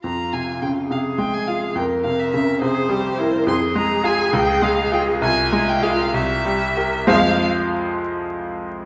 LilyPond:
<<
  \new Staff \with { instrumentName = "Violin" } { \time 6/8 \key f \minor \tempo 4. = 69 bes''8 aes''8 g''8 f''8 g''16 aes''16 f''8 | g''8 f''16 e''16 e''8 c''4. | c'''8 bes''8 aes''8 g''8 f''8 g''8 | aes''8 aes''16 g''16 f''8 e''4. |
f''8 r2 r8 | }
  \new Staff \with { instrumentName = "Cello" } { \time 6/8 \key f \minor f'4. aes'4. | bes'4. aes'8 g'8 bes'8 | aes'2. | f'4. g'8. r8. |
aes8 r2 r8 | }
  \new Staff \with { instrumentName = "Grand piano" } { \clef bass \time 6/8 \key f \minor f,8 c8 des8 c8 aes8 f'8 | f,8 c8 des8 c8 g8 e'8 | f,8 aes8 <f' aes'>8 des,8 aes8 <f' aes'>8 | c,8 aes8 <f' aes'>8 c,8 g8 <g' bes'>8 |
<f, f aes f' c'' f''>8 r2 r8 | }
>>